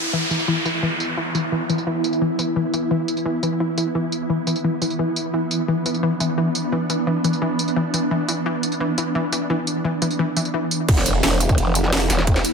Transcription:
Already playing: E3 B3 E4, downlifter
0.13 E3
0.31 E3, tambourine
0.39 tambourine
0.48 E3
0.65 E3, tambourine
0.83 E3
1.00 tambourine
1.17 E3
1.35 E3, tambourine
1.52 E3
1.69 E3, tambourine
1.78 tambourine
1.87 E3
2.04 tambourine
2.13 tambourine
2.22 E3
2.39 E3, tambourine
2.56 E3
2.74 E3, tambourine
2.91 E3
3.08 tambourine
3.17 tambourine
3.26 E3
3.43 E3, tambourine
3.60 E3
3.78 E3, tambourine
3.95 E3
4.12 tambourine
4.30 E3
4.47 E3, tambourine
4.56 tambourine
4.64 E3
4.82 E3, tambourine
4.90 tambourine
4.99 E3
5.16 tambourine
5.34 E3 D4
5.51 tambourine
5.68 E3
5.86 E3, tambourine
5.94 tambourine
6.03 E3
6.20 E3, tambourine
6.38 E3
6.55 tambourine
6.72 E3
6.90 E3, tambourine
7.07 E3
7.24 E3, tambourine
7.33 tambourine
7.42 E3
7.59 tambourine
7.68 tambourine
7.76 E3
7.94 E3, tambourine
8.11 E3
8.28 E3, tambourine
8.46 E3
8.63 tambourine
8.72 tambourine
8.80 E3
8.98 E3, tambourine
9.15 E3
9.32 E3, tambourine
9.50 E3
9.67 tambourine
9.85 E3
10.02 E3, tambourine
10.10 tambourine
10.19 E3
10.37 E3, tambourine
10.45 tambourine
10.54 E3
10.71 tambourine
10.89 E1 E3 B3 E4, kick, closed hi-hat, ride, crash, impact
10.97 snare
11.06 closed hi-hat, ride, tambourine
11.15 ride
11.23 E1, snare, closed hi-hat, ride
11.40 closed hi-hat, ride, tambourine
11.49 kick, tambourine
11.58 F1, closed hi-hat, ride
11.75 closed hi-hat, ride, tambourine
11.84 snare
11.93 snare, closed hi-hat, ride
12.01 ride
12.10 E1, snare, closed hi-hat, ride, tambourine
12.19 snare
12.27 kick, closed hi-hat, ride
12.36 snare, ride
12.45 snare, closed hi-hat, tambourine

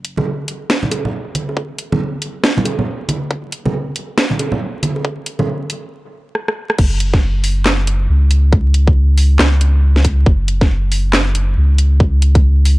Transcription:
Already playing: F#1
0.05 closed hi-hat
0.17 high bongo, high conga, low conga
0.48 closed hi-hat
0.70 F#1, snare
0.83 high conga, low conga
0.91 closed hi-hat, high bongo
1.05 low conga
1.35 closed hi-hat, high conga
1.49 high bongo
1.57 E1, kick
1.78 closed hi-hat
1.92 high bongo, high conga, low conga
2.00 F#1
2.22 closed hi-hat
2.44 snare
2.57 high conga, low conga
2.65 closed hi-hat, high bongo
2.79 low conga
3.09 closed hi-hat, high conga
3.31 F#1, kick
3.52 closed hi-hat
3.65 high bongo, high conga, low conga
3.96 closed hi-hat
4.18 F#1, snare
4.30 high conga, low conga
4.39 closed hi-hat, high bongo
4.52 low conga
4.83 closed hi-hat, high conga
4.96 high bongo
5.05 E1, kick
5.26 closed hi-hat
5.39 high bongo, high conga, low conga
5.48 A1
5.70 closed hi-hat
6.35 cross-stick
6.48 cross-stick
6.70 cross-stick
6.78 F#1, kick, crash
7.00 closed hi-hat
7.13 kick, snare
7.22 F#1
7.44 open hi-hat
7.66 snare, clap
7.87 closed hi-hat
8.09 C#2
8.31 closed hi-hat
8.53 kick
8.74 closed hi-hat
8.87 kick
9.18 open hi-hat
9.39 C#2, snare, clap
9.61 closed hi-hat
9.96 snare
10.05 kick, closed hi-hat
10.26 F#1, kick
10.48 closed hi-hat
10.61 kick, snare
10.70 F#1
10.92 open hi-hat
11.13 snare, clap
11.35 closed hi-hat
11.57 C#2
11.78 closed hi-hat
12.00 kick
12.22 closed hi-hat
12.35 kick, closed hi-hat
12.65 open hi-hat

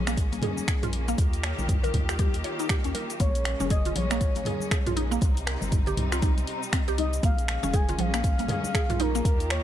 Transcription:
Already playing: A#1 G#3 A#3 C#4
0.07 A#3, finger snap, muted conga, cabasa
0.17 kick, closed hi-hat, cabasa
0.32 A#1 A#3, closed hi-hat, muted conga, high conga, cabasa
0.42 G#4, mid tom, open hi-hat, high conga, low conga
0.58 high conga, cabasa
0.68 G#4, finger snap, kick, closed hi-hat, cabasa
0.83 A#1 F4, closed hi-hat, mid tom, high conga, cabasa
0.93 open hi-hat, muted conga
1.08 A#3, closed hi-hat, cabasa
1.18 D#2 D#3 F4 G4, kick, closed hi-hat, muted conga, cabasa
1.33 closed hi-hat, cabasa
1.43 C#5, finger snap, open hi-hat, muted conga
1.58 A#1, high conga, low conga, cabasa
1.69 kick, closed hi-hat, mid tom, cabasa
1.83 A#4, closed hi-hat, muted conga, low conga, cabasa
1.94 D#2, kick, mid tom, open hi-hat, high conga
2.09 G4, finger snap, muted conga, cabasa
2.19 G4, kick, closed hi-hat, high conga, cabasa
2.34 D#2, closed hi-hat, muted conga, cabasa
2.44 C#5, open hi-hat
2.59 D#4, closed hi-hat, cabasa
2.69 G4, finger snap, kick, closed hi-hat, muted conga, cabasa
2.84 D#2 C#4, closed hi-hat, cabasa
2.94 A#4, open hi-hat, muted conga, high conga
3.10 closed hi-hat, cabasa
3.20 A#1 G#3 A#3 C#4 C#5, kick, closed hi-hat, muted conga, cabasa
3.35 closed hi-hat, cabasa
3.44 finger snap, open hi-hat, muted conga
3.60 F1 C#4, high conga, low conga, cabasa
3.70 G#4 D#5, kick, closed hi-hat, cabasa
3.85 F4, closed hi-hat, muted conga, low conga, cabasa
3.96 A#1 F3 C#5, open hi-hat, high conga
4.10 A#3, finger snap, muted conga, cabasa
4.21 kick, closed hi-hat, cabasa
4.35 A#1 A#3, closed hi-hat, muted conga, high conga, cabasa
4.45 G#4, mid tom, open hi-hat, high conga, low conga
4.60 high conga, cabasa
4.71 G#4, finger snap, kick, closed hi-hat, muted conga, cabasa
4.86 A#1 F4, closed hi-hat, mid tom, high conga, cabasa
4.96 D#4, open hi-hat, muted conga
5.11 A#3, closed hi-hat, cabasa
5.21 C2 C3 G3 C4 D#4, kick, closed hi-hat, muted conga, cabasa
5.37 closed hi-hat, cabasa
5.46 A#4, finger snap, open hi-hat, muted conga
5.61 G1, high conga, low conga, cabasa
5.72 kick, closed hi-hat, mid tom, cabasa
5.86 G4, closed hi-hat, muted conga, low conga, cabasa
5.97 C2, mid tom, open hi-hat, high conga
6.12 F4, finger snap, muted conga, cabasa
6.22 D#4, kick, closed hi-hat, high conga, cabasa
6.37 C2, closed hi-hat, muted conga, cabasa
6.47 open hi-hat
6.63 cabasa
6.73 C4, finger snap, kick, closed hi-hat, muted conga, cabasa
6.87 C2 G4, closed hi-hat, cabasa
6.98 D#4 D#5, open hi-hat, muted conga, high conga
7.13 closed hi-hat, cabasa
7.23 A#1 G#3 A#3 C#4 F5, kick, closed hi-hat, muted conga, cabasa
7.38 closed hi-hat, cabasa
7.48 finger snap, open hi-hat, muted conga
7.63 F1 C#4, high conga, low conga, cabasa
7.73 G#4 G#5, kick, closed hi-hat, cabasa
7.89 F4, closed hi-hat, muted conga, low conga, cabasa
7.93 G#5
7.98 A#1 F3 F5, open hi-hat, high conga
8.14 A#3, finger snap, muted conga, cabasa
8.24 kick, closed hi-hat, cabasa
8.38 A#1 A#3, closed hi-hat, muted conga, high conga, cabasa
8.48 G#4, mid tom, open hi-hat, high conga, low conga
8.64 high conga, cabasa
8.74 G#4, finger snap, kick, closed hi-hat, muted conga, cabasa
8.89 A#1 F4, closed hi-hat, mid tom, high conga, cabasa
9.00 D#4 A#4, open hi-hat, muted conga
9.15 A#3, closed hi-hat, cabasa
9.25 D#2 D#3 F4 G4, kick, closed hi-hat, muted conga, cabasa
9.40 closed hi-hat, cabasa
9.50 C#5, finger snap, open hi-hat, muted conga

